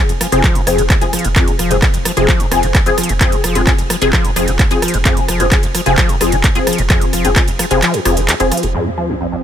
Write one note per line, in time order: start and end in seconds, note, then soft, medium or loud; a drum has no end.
0.09 0.21 F1 medium
0.09 0.13 F2 medium
0.09 closed hi-hat medium
0.09 ride medium
0.21 0.27 F3 medium
0.21 cross-stick loud
0.21 open hi-hat loud
0.21 ride medium
0.32 0.44 F1 medium
0.32 0.42 C3 loud
0.32 0.43 F3 loud
0.32 0.43 C4 medium
0.32 0.43 G#4 loud
0.32 closed hi-hat medium
0.32 ride medium
0.44 0.57 F3 loud
0.44 kick loud
0.44 cross-stick medium
0.44 clap loud
0.44 closed hi-hat soft
0.44 ride medium
0.55 0.62 F2 loud
0.55 closed hi-hat soft
0.55 ride medium
0.67 0.78 F1 loud
0.67 0.80 F2 medium
0.67 0.84 F3 medium
0.67 0.84 C4 medium
0.67 0.84 G#4 medium
0.67 cross-stick medium
0.67 open hi-hat loud
0.67 ride medium
0.78 0.90 F1 medium
0.78 0.82 F3 medium
0.78 closed hi-hat medium
0.78 ride medium
0.90 0.96 D#2 medium
0.90 kick loud
0.90 cross-stick medium
0.90 clap loud
0.90 closed hi-hat medium
0.90 ride medium
1.01 1.13 F1 medium
1.01 1.05 F2 medium
1.01 1.12 F3 loud
1.01 1.12 C4 medium
1.01 1.12 G#4 loud
1.01 closed hi-hat medium
1.01 ride medium
1.13 1.26 F3 medium
1.13 cross-stick medium
1.13 open hi-hat loud
1.13 ride medium
1.19 closed hi-hat medium
1.25 1.36 F1 medium
1.25 1.28 F2 loud
1.25 closed hi-hat medium
1.25 ride medium
1.36 1.49 F2 loud
1.36 1.68 F3 medium
1.36 1.68 C4 medium
1.36 1.68 G#4 medium
1.36 kick loud
1.36 cross-stick loud
1.36 clap loud
1.36 closed hi-hat medium
1.36 ride medium
1.48 1.52 C3 loud
1.48 closed hi-hat soft
1.48 ride medium
1.59 1.70 F1 loud
1.59 1.72 F3 medium
1.59 cross-stick medium
1.59 open hi-hat loud
1.59 ride medium
1.71 1.82 F1 medium
1.71 1.77 F2 medium
1.71 1.88 F3 medium
1.71 1.88 C4 medium
1.71 1.88 G#4 medium
1.71 closed hi-hat medium
1.71 ride medium
1.82 1.89 F2 medium
1.82 kick loud
1.82 cross-stick loud
1.82 clap loud
1.82 closed hi-hat medium
1.82 ride medium
1.94 2.05 F1 medium
1.94 1.98 F2 medium
1.94 closed hi-hat medium
1.94 ride medium
2.05 2.12 F3 medium
2.05 cross-stick loud
2.05 open hi-hat loud
2.05 ride medium
2.17 2.28 F1 medium
2.17 2.26 C3 loud
2.17 2.28 F3 medium
2.17 2.28 C4 medium
2.17 2.28 G#4 loud
2.17 closed hi-hat medium
2.17 ride medium
2.28 2.42 F3 loud
2.28 kick loud
2.28 cross-stick medium
2.28 clap loud
2.28 closed hi-hat medium
2.28 ride medium
2.40 2.46 F2 loud
2.40 closed hi-hat medium
2.40 ride medium
2.52 2.63 F1 loud
2.52 2.65 F2 medium
2.52 2.69 F3 medium
2.52 2.69 C4 medium
2.52 2.69 G#4 loud
2.52 cross-stick loud
2.52 open hi-hat loud
2.52 ride medium
2.63 2.74 F1 medium
2.63 2.67 F3 medium
2.63 closed hi-hat medium
2.63 ride medium
2.75 2.81 D#2 medium
2.75 kick loud
2.75 cross-stick loud
2.75 clap loud
2.75 closed hi-hat medium
2.75 ride medium
2.86 2.97 F1 medium
2.86 2.90 F2 medium
2.86 2.97 F3 loud
2.86 2.97 C4 medium
2.86 2.97 G#4 loud
2.86 closed hi-hat medium
2.86 ride medium
2.98 3.11 F3 medium
2.98 cross-stick medium
2.98 open hi-hat loud
2.98 ride medium
3.03 closed hi-hat medium
3.09 3.21 F1 medium
3.09 3.13 F2 loud
3.09 closed hi-hat soft
3.09 ride medium
3.21 3.34 F2 loud
3.21 3.53 F3 medium
3.21 3.53 C4 medium
3.21 3.53 G#4 loud
3.21 kick loud
3.21 cross-stick medium
3.21 clap loud
3.21 closed hi-hat medium
3.21 ride medium
3.32 3.36 C3 loud
3.32 closed hi-hat medium
3.32 ride medium
3.44 3.55 F1 loud
3.44 3.57 F3 medium
3.44 cross-stick loud
3.44 open hi-hat loud
3.44 ride medium
3.55 3.67 F1 medium
3.55 3.62 F2 medium
3.55 3.73 F3 medium
3.55 3.73 C4 medium
3.55 3.73 G#4 medium
3.55 closed hi-hat soft
3.55 ride medium
3.67 3.73 F2 medium
3.67 kick loud
3.67 cross-stick medium
3.67 clap loud
3.67 closed hi-hat medium
3.67 ride medium
3.78 3.90 F1 medium
3.78 3.82 F2 medium
3.78 closed hi-hat medium
3.78 ride medium
3.90 3.96 F3 medium
3.90 cross-stick loud
3.90 open hi-hat loud
3.90 ride medium
4.02 4.13 F1 medium
4.02 4.11 C3 loud
4.02 4.12 F3 loud
4.02 4.12 C4 medium
4.02 4.12 G#4 loud
4.02 closed hi-hat medium
4.02 ride medium
4.13 4.26 F3 loud
4.13 kick loud
4.13 cross-stick loud
4.13 clap loud
4.13 closed hi-hat medium
4.13 ride medium
4.25 4.31 F2 loud
4.25 closed hi-hat medium
4.25 ride medium
4.36 4.47 F1 loud
4.36 4.49 F2 medium
4.36 4.53 F3 medium
4.36 4.53 C4 medium
4.36 4.53 G#4 medium
4.36 cross-stick medium
4.36 open hi-hat loud
4.36 ride medium
4.48 4.59 F1 medium
4.48 4.52 F3 medium
4.48 closed hi-hat medium
4.48 ride medium
4.59 4.66 D#2 medium
4.59 kick loud
4.59 cross-stick medium
4.59 clap loud
4.59 closed hi-hat medium
4.59 ride medium
4.71 4.82 F1 medium
4.71 4.75 F2 medium
4.71 4.82 F3 loud
4.71 4.82 C4 medium
4.71 4.82 G#4 loud
4.71 closed hi-hat medium
4.71 ride medium
4.82 4.95 F3 medium
4.82 cross-stick loud
4.82 open hi-hat loud
4.82 ride medium
4.88 closed hi-hat medium
4.94 5.05 F1 medium
4.94 4.98 F2 loud
4.94 closed hi-hat medium
4.94 ride medium
5.05 5.18 F2 loud
5.05 5.37 F3 medium
5.05 5.37 C4 medium
5.05 5.37 G#4 loud
5.05 kick loud
5.05 cross-stick medium
5.05 clap loud
5.05 closed hi-hat medium
5.05 ride medium
5.17 5.21 C3 loud
5.17 closed hi-hat medium
5.17 ride medium
5.28 5.39 F1 loud
5.28 5.42 F3 medium
5.28 cross-stick medium
5.28 open hi-hat medium
5.28 ride medium
5.40 5.51 F1 medium
5.40 5.46 F2 medium
5.40 5.57 F3 medium
5.40 5.57 C4 medium
5.40 5.57 G#4 medium
5.40 closed hi-hat soft
5.40 ride medium
5.52 5.58 F2 medium
5.52 kick loud
5.52 cross-stick loud
5.52 clap loud
5.52 closed hi-hat medium
5.52 ride medium
5.63 5.74 F1 medium
5.63 5.67 F2 medium
5.63 closed hi-hat medium
5.63 ride medium
5.75 5.81 F3 medium
5.75 cross-stick medium
5.75 open hi-hat loud
5.75 ride medium
5.86 5.97 F1 medium
5.86 5.96 C3 loud
5.86 5.97 F3 medium
5.86 5.97 C4 medium
5.86 5.97 G#4 loud
5.86 closed hi-hat medium
5.86 ride medium
5.98 6.11 F3 loud
5.98 kick loud
5.98 cross-stick loud
5.98 clap loud
5.98 closed hi-hat medium
5.98 ride medium
6.09 6.16 F2 loud
6.09 closed hi-hat medium
6.09 ride medium
6.21 6.32 F1 loud
6.21 6.34 F2 medium
6.21 6.38 F3 medium
6.21 6.38 C4 medium
6.21 6.38 G#4 loud
6.21 cross-stick medium
6.21 open hi-hat loud
6.21 ride medium
6.32 6.44 F1 medium
6.32 6.36 F3 medium
6.32 closed hi-hat medium
6.32 ride medium
6.44 6.50 D#2 medium
6.44 kick loud
6.44 cross-stick medium
6.44 clap loud
6.44 closed hi-hat medium
6.44 ride medium
6.55 6.67 F1 medium
6.55 6.59 F2 medium
6.55 6.66 F3 loud
6.55 6.66 C4 medium
6.55 6.66 G#4 loud
6.55 closed hi-hat medium
6.55 ride medium
6.67 6.80 F3 medium
6.67 cross-stick medium
6.67 open hi-hat loud
6.67 ride medium
6.73 closed hi-hat medium
6.78 6.90 F1 medium
6.78 6.82 F2 loud
6.78 closed hi-hat medium
6.78 ride medium
6.90 7.03 F2 loud
6.90 7.22 F3 medium
6.90 7.22 C4 medium
6.90 7.22 G#4 loud
6.90 kick loud
6.90 cross-stick medium
6.90 clap loud
6.90 closed hi-hat medium
6.90 ride medium
7.02 7.05 C3 loud
7.02 closed hi-hat medium
7.02 ride medium
7.13 7.24 F1 loud
7.13 7.26 F3 medium
7.13 cross-stick medium
7.13 open hi-hat medium
7.13 ride medium
7.25 7.36 F1 medium
7.25 7.31 F2 medium
7.25 7.42 F3 medium
7.25 7.42 C4 medium
7.25 7.42 G#4 medium
7.25 closed hi-hat medium
7.25 ride medium
7.36 7.43 F2 medium
7.36 kick loud
7.36 cross-stick loud
7.36 clap loud
7.36 closed hi-hat medium
7.36 ride medium
7.48 7.59 F1 medium
7.48 7.52 F2 medium
7.48 closed hi-hat medium
7.48 ride medium
7.59 7.66 F3 medium
7.59 cross-stick loud
7.59 open hi-hat loud
7.59 ride medium
7.71 7.82 F1 medium
7.71 7.80 C3 loud
7.71 7.81 F3 loud
7.71 7.81 C4 medium
7.71 7.81 G#4 loud
7.71 closed hi-hat medium
7.71 ride medium
7.82 7.95 F3 loud
7.82 cross-stick medium
7.82 clap loud
7.82 closed hi-hat medium
7.82 ride medium
7.94 8.00 F2 loud
7.94 closed hi-hat medium
7.94 ride medium
8.05 8.16 F1 loud
8.05 8.18 F2 medium
8.05 8.23 F3 medium
8.05 8.23 C4 medium
8.05 8.23 G#4 medium
8.05 cross-stick medium
8.05 open hi-hat loud
8.05 ride medium
8.17 8.28 F1 medium
8.17 8.21 F3 medium
8.17 closed hi-hat medium
8.17 ride medium
8.28 8.35 D#2 medium
8.28 cross-stick medium
8.28 clap loud
8.28 closed hi-hat medium
8.28 ride medium
8.40 8.51 F1 medium
8.40 8.44 F2 medium
8.40 8.51 F3 loud
8.40 8.51 C4 medium
8.40 8.51 G#4 loud
8.40 closed hi-hat medium
8.40 ride medium
8.52 8.65 F3 medium
8.52 cross-stick medium
8.52 open hi-hat loud
8.52 ride medium
8.57 closed hi-hat medium
8.63 8.74 F1 medium
8.63 8.67 F2 loud
8.63 closed hi-hat medium
8.63 ride medium
8.75 8.88 F2 loud
8.75 9.43 F3 medium
8.75 9.06 F3 medium
8.75 9.43 C4 medium
8.75 9.06 C4 medium
8.75 9.06 G#4 medium
8.75 closed hi-hat medium
8.75 crash medium
8.75 sub drop medium
8.86 8.90 C3 loud
8.86 closed hi-hat medium
8.98 9.11 F3 medium
9.09 9.16 F2 medium
9.09 9.26 F3 medium
9.09 9.26 C4 medium
9.09 9.26 G#4 medium
9.09 closed hi-hat medium
9.21 9.27 F2 medium
9.21 closed hi-hat medium
9.32 9.36 F2 medium
9.32 closed hi-hat medium